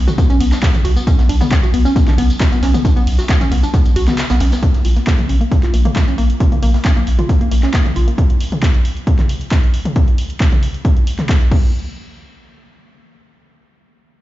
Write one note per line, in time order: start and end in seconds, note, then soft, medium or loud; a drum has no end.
0.08 0.10 F#4 medium
0.08 closed hi-hat medium
0.08 mid tom loud
0.08 tambourine medium
0.18 0.21 B3 medium
0.18 kick loud
0.18 closed hi-hat medium
0.18 ride medium
0.18 tambourine medium
0.30 0.40 B1 medium
0.30 0.36 C#4 loud
0.30 closed hi-hat medium
0.30 tambourine soft
0.40 0.52 B1 loud
0.40 0.43 B3 medium
0.40 closed hi-hat medium
0.40 open hi-hat loud
0.40 ride medium
0.52 0.59 D4 medium
0.52 snare medium
0.52 clap soft
0.52 closed hi-hat medium
0.52 tambourine medium
0.62 0.65 B3 loud
0.62 kick loud
0.62 snare loud
0.62 clap loud
0.62 closed hi-hat medium
0.62 closed hi-hat loud
0.62 tambourine medium
0.74 0.84 B1 medium
0.74 closed hi-hat soft
0.74 mid tom medium
0.74 tambourine soft
0.84 0.96 B1 loud
0.84 0.88 F#4 medium
0.84 closed hi-hat medium
0.84 open hi-hat medium
0.84 ride medium
0.96 0.99 B3 medium
0.96 closed hi-hat medium
0.96 tambourine medium
1.07 1.14 C#4 loud
1.07 kick loud
1.07 closed hi-hat medium
1.07 closed hi-hat loud
1.07 ride medium
1.07 tambourine medium
1.19 1.29 B1 medium
1.19 1.21 B3 medium
1.19 snare medium
1.19 closed hi-hat medium
1.19 tambourine soft
1.29 1.41 B1 loud
1.29 1.37 D4 medium
1.29 closed hi-hat medium
1.29 open hi-hat loud
1.29 ride medium
1.41 1.44 B3 loud
1.41 snare medium
1.41 closed hi-hat medium
1.41 mid tom medium
1.41 tambourine medium
1.51 kick loud
1.51 snare loud
1.51 clap loud
1.51 closed hi-hat medium
1.51 ride medium
1.51 tambourine medium
1.63 1.73 B1 medium
1.63 1.66 F#4 medium
1.63 closed hi-hat medium
1.63 tambourine soft
1.74 1.85 B1 loud
1.74 1.77 B3 medium
1.74 closed hi-hat medium
1.74 open hi-hat medium
1.74 ride medium
1.85 1.92 C#4 loud
1.85 closed hi-hat medium
1.85 tambourine medium
1.96 1.99 B3 medium
1.96 kick loud
1.96 closed hi-hat medium
1.96 ride medium
1.96 tambourine medium
2.08 2.17 B1 medium
2.08 2.14 D4 medium
2.08 clap soft
2.08 closed hi-hat medium
2.08 mid tom medium
2.08 tambourine soft
2.18 2.30 B1 loud
2.18 2.21 B3 loud
2.18 closed hi-hat medium
2.18 open hi-hat loud
2.18 ride medium
2.30 closed hi-hat medium
2.30 tambourine medium
2.40 2.43 F#4 medium
2.40 kick loud
2.40 snare loud
2.40 clap loud
2.40 closed hi-hat loud
2.40 closed hi-hat medium
2.40 ride medium
2.40 tambourine medium
2.52 2.62 B1 medium
2.52 2.55 B3 medium
2.52 snare medium
2.52 closed hi-hat medium
2.52 tambourine soft
2.63 2.74 B1 loud
2.63 2.70 C#4 loud
2.63 snare loud
2.63 closed hi-hat medium
2.63 open hi-hat medium
2.63 ride medium
2.74 2.77 B3 medium
2.74 closed hi-hat medium
2.74 mid tom loud
2.74 tambourine medium
2.85 2.92 D4 medium
2.85 kick loud
2.85 closed hi-hat medium
2.85 closed hi-hat loud
2.85 ride medium
2.85 tambourine medium
2.96 3.07 B1 medium
2.96 2.99 B3 loud
2.96 closed hi-hat medium
2.96 tambourine soft
3.07 3.19 B1 loud
3.07 open hi-hat loud
3.07 open hi-hat medium
3.07 ride medium
3.19 3.21 F#4 medium
3.19 snare soft
3.19 closed hi-hat medium
3.19 tambourine medium
3.29 3.32 B3 medium
3.29 kick loud
3.29 snare loud
3.29 clap loud
3.29 closed hi-hat medium
3.29 ride medium
3.29 tambourine medium
3.41 3.51 B1 medium
3.41 3.47 C#4 loud
3.41 closed hi-hat medium
3.41 mid tom medium
3.41 tambourine soft
3.51 3.63 B1 loud
3.51 3.54 B3 medium
3.51 closed hi-hat medium
3.51 open hi-hat medium
3.51 ride medium
3.63 3.70 D4 medium
3.63 closed hi-hat medium
3.63 tambourine medium
3.74 3.77 B3 loud
3.74 kick loud
3.74 closed hi-hat medium
3.74 closed hi-hat loud
3.74 ride medium
3.74 tambourine medium
3.85 3.95 B1 medium
3.85 closed hi-hat medium
3.85 tambourine soft
3.95 4.07 B1 loud
3.95 4.01 F#4 loud
3.95 closed hi-hat medium
3.95 open hi-hat loud
3.95 ride medium
4.08 4.14 B3 medium
4.08 snare medium
4.08 clap soft
4.08 closed hi-hat medium
4.08 mid tom medium
4.08 tambourine medium
4.18 snare loud
4.18 clap loud
4.18 closed hi-hat loud
4.18 closed hi-hat medium
4.18 ride medium
4.18 tambourine medium
4.30 4.40 B1 medium
4.30 4.34 B3 loud
4.30 snare loud
4.30 closed hi-hat medium
4.30 tambourine soft
4.40 4.52 B1 loud
4.40 4.43 C#4 medium
4.40 snare loud
4.40 closed hi-hat medium
4.40 open hi-hat medium
4.40 ride medium
4.52 4.56 B3 medium
4.52 snare loud
4.52 closed hi-hat medium
4.52 tambourine medium
4.62 4.66 A#3 loud
4.62 kick loud
4.62 closed hi-hat medium
4.62 closed hi-hat loud
4.74 4.84 A#1 medium
4.74 snare soft
4.74 closed hi-hat medium
4.85 4.96 A#1 loud
4.85 4.88 F4 medium
4.85 closed hi-hat medium
4.85 open hi-hat loud
4.96 4.99 A#3 medium
4.96 snare soft
4.96 closed hi-hat medium
5.07 5.14 A#3 loud
5.07 kick loud
5.07 snare loud
5.07 clap loud
5.07 closed hi-hat loud
5.07 closed hi-hat medium
5.19 5.29 A#1 medium
5.19 5.21 A#3 medium
5.19 closed hi-hat medium
5.19 mid tom medium
5.29 5.41 A#1 loud
5.29 5.37 C#4 medium
5.29 closed hi-hat medium
5.29 open hi-hat medium
5.41 5.44 A#3 loud
5.41 closed hi-hat medium
5.52 kick loud
5.52 closed hi-hat loud
5.52 closed hi-hat medium
5.63 5.73 A#1 medium
5.63 5.66 F4 medium
5.63 clap soft
5.63 closed hi-hat medium
5.74 5.85 A#1 loud
5.74 5.77 A#3 medium
5.74 closed hi-hat medium
5.74 open hi-hat loud
5.85 5.92 A#3 loud
5.85 closed hi-hat medium
5.85 mid tom medium
5.95 5.99 A#3 medium
5.95 kick loud
5.95 snare loud
5.95 clap loud
5.95 closed hi-hat medium
5.95 closed hi-hat loud
6.08 6.18 A#1 medium
6.08 6.14 C#4 medium
6.08 snare soft
6.08 closed hi-hat medium
6.18 6.30 A#1 loud
6.18 6.21 A#3 loud
6.18 closed hi-hat medium
6.18 open hi-hat medium
6.30 closed hi-hat medium
6.30 closed hi-hat soft
6.40 6.43 F4 medium
6.40 kick loud
6.40 closed hi-hat loud
6.40 closed hi-hat medium
6.52 6.62 A#1 medium
6.52 6.55 A#3 medium
6.52 closed hi-hat medium
6.52 mid tom medium
6.62 6.74 A#1 loud
6.62 6.70 A#3 loud
6.62 open hi-hat medium
6.62 open hi-hat loud
6.74 6.77 A#3 medium
6.74 snare medium
6.74 closed hi-hat medium
6.85 6.92 C#4 medium
6.85 kick loud
6.85 snare loud
6.85 clap loud
6.85 closed hi-hat medium
6.96 7.06 A#1 medium
6.96 6.99 A#3 loud
6.96 closed hi-hat medium
7.07 7.19 A#1 loud
7.07 closed hi-hat medium
7.07 open hi-hat loud
7.19 7.21 F4 medium
7.19 closed hi-hat medium
7.19 mid tom medium
7.29 7.32 A#3 medium
7.29 kick loud
7.29 closed hi-hat medium
7.41 7.51 A#1 medium
7.41 7.48 A#3 loud
7.41 closed hi-hat medium
7.51 7.63 A#1 loud
7.51 7.54 A#3 medium
7.51 closed hi-hat medium
7.51 open hi-hat loud
7.63 7.70 C#4 medium
7.63 snare medium
7.63 clap soft
7.63 closed hi-hat medium
7.74 7.77 A#3 loud
7.74 kick loud
7.74 snare loud
7.74 clap loud
7.74 closed hi-hat loud
7.74 closed hi-hat medium
7.85 7.95 A#1 medium
7.85 closed hi-hat medium
7.85 mid tom medium
7.96 8.07 A#1 loud
7.96 7.99 F4 medium
7.96 closed hi-hat medium
7.96 open hi-hat loud
8.08 8.10 A#3 medium
8.08 closed hi-hat medium
8.18 kick loud
8.18 closed hi-hat loud
8.30 closed hi-hat medium
8.40 open hi-hat loud
8.52 closed hi-hat medium
8.52 mid tom medium
8.63 kick loud
8.63 clap loud
8.63 closed hi-hat loud
8.74 closed hi-hat medium
8.85 open hi-hat loud
8.97 closed hi-hat medium
9.07 kick loud
9.07 closed hi-hat medium
9.19 clap soft
9.19 closed hi-hat medium
9.19 mid tom loud
9.29 open hi-hat loud
9.41 closed hi-hat medium
9.51 kick loud
9.51 clap loud
9.51 closed hi-hat medium
9.63 closed hi-hat medium
9.74 open hi-hat loud
9.85 closed hi-hat medium
9.85 mid tom loud
9.96 kick loud
9.96 closed hi-hat medium
10.08 closed hi-hat medium
10.18 open hi-hat loud
10.30 closed hi-hat medium
10.40 kick loud
10.40 clap loud
10.40 closed hi-hat medium
10.52 closed hi-hat medium
10.52 mid tom loud
10.63 open hi-hat medium
10.74 closed hi-hat medium
10.85 kick loud
10.85 closed hi-hat medium
10.97 closed hi-hat medium
11.07 open hi-hat loud
11.19 clap soft
11.19 closed hi-hat medium
11.19 mid tom loud
11.29 kick loud
11.29 clap loud
11.29 closed hi-hat medium
11.41 closed hi-hat medium
11.51 11.72 A#3 loud
11.51 kick loud
11.51 crash medium